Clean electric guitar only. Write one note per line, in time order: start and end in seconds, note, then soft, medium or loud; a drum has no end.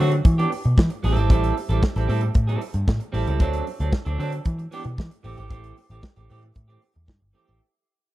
0.00 0.15 F#3 medium
0.00 0.12 A3 medium
0.00 0.11 C4 medium
0.00 0.11 F#4 medium
0.12 muted clean electric guitar stroke medium
0.25 muted clean electric guitar stroke soft
0.38 0.49 E3 medium
0.38 0.50 B3 medium
0.38 0.51 D4 medium
0.38 0.51 G4 medium
0.51 muted clean electric guitar stroke soft
0.65 muted clean electric guitar stroke soft
0.77 muted clean electric guitar stroke medium
0.90 muted clean electric guitar stroke soft
1.03 1.17 G3 medium
1.03 1.16 C4 medium
1.03 1.16 E4 medium
1.03 1.15 A4 medium
1.16 1.29 G3 medium
1.16 1.29 C4 medium
1.16 1.30 E4 medium
1.16 1.29 A4 medium
1.30 1.54 G3 medium
1.30 1.54 C4 medium
1.30 1.55 E4 loud
1.30 1.55 A4 loud
1.55 muted clean electric guitar stroke soft
1.69 1.82 G3 medium
1.69 1.82 C4 medium
1.69 1.83 E4 medium
1.69 1.82 A4 medium
1.83 muted clean electric guitar stroke soft
1.96 2.06 G3 medium
1.96 2.07 C4 medium
1.96 2.08 E4 medium
1.96 2.09 A4 medium
2.07 2.25 G3 medium
2.07 2.22 C4 medium
2.07 2.22 E4 medium
2.07 2.21 A4 medium
2.22 muted clean electric guitar stroke soft
2.35 muted clean electric guitar stroke soft
2.47 2.59 G3 medium
2.47 2.60 C4 medium
2.47 2.61 E4 medium
2.47 2.61 A4 medium
2.61 muted clean electric guitar stroke soft
2.74 muted clean electric guitar stroke medium
2.87 muted clean electric guitar stroke soft
3.00 muted clean electric guitar stroke soft
3.12 3.28 G3 medium
3.12 3.27 C4 medium
3.12 3.26 E4 medium
3.12 3.26 A4 medium
3.27 3.39 G3 medium
3.27 3.39 C4 medium
3.27 3.40 E4 medium
3.27 3.40 A4 medium
3.40 3.64 F#3 medium
3.40 3.64 C4 loud
3.40 3.65 D4 medium
3.40 3.65 A4 loud
3.68 muted clean electric guitar stroke soft
3.80 3.92 F#3 medium
3.80 3.92 C4 medium
3.80 3.93 D4 medium
3.80 3.93 A4 medium
4.05 4.17 F#3 soft
4.05 4.18 C4 medium
4.05 4.19 D4 medium
4.05 4.18 A4 medium
4.18 4.35 F#3 medium
4.18 4.33 C4 medium
4.18 4.33 D4 medium
4.18 4.32 A4 medium
4.33 muted clean electric guitar stroke soft
4.58 muted clean electric guitar stroke soft
4.71 4.88 E3 medium
4.71 4.84 B3 medium
4.71 4.84 D4 medium
4.71 4.83 G4 medium
4.84 muted clean electric guitar stroke medium
4.97 muted clean electric guitar stroke soft
5.10 muted clean electric guitar stroke soft
5.23 5.38 E3 medium
5.23 5.37 A3 medium
5.23 5.36 C4 medium
5.23 5.36 G4 medium
5.37 5.48 E3 medium
5.37 5.49 A3 medium
5.37 5.49 C4 medium
5.37 5.50 G4 medium
5.49 5.74 E3 medium
5.49 5.74 A3 medium
5.49 5.75 C4 medium
5.49 5.75 G4 medium
5.77 muted clean electric guitar stroke soft
5.91 6.02 E3 medium
5.91 6.02 A3 medium
5.91 6.03 C4 medium
5.91 6.03 G4 medium
6.03 muted clean electric guitar stroke soft
6.16 6.29 E3 soft
6.16 6.29 A3 soft
6.16 6.29 C4 soft
6.16 6.29 G4 medium
6.30 6.46 E3 medium
6.30 6.44 A3 medium
6.30 6.43 C4 medium
6.30 6.42 G4 medium
6.43 muted clean electric guitar stroke soft
6.56 muted clean electric guitar stroke medium
6.68 6.79 E3 medium
6.68 6.80 A3 medium
6.68 6.81 C4 medium
6.68 6.81 G4 medium
6.81 muted clean electric guitar stroke soft
6.94 muted clean electric guitar stroke medium
7.07 muted clean electric guitar stroke medium
7.20 muted clean electric guitar stroke soft
7.33 7.46 E3 medium
7.33 7.46 A3 medium
7.33 7.45 C4 medium
7.33 7.44 G4 medium
7.45 7.60 E3 soft
7.45 7.60 A3 medium
7.45 7.60 C4 medium
7.45 7.59 G4 medium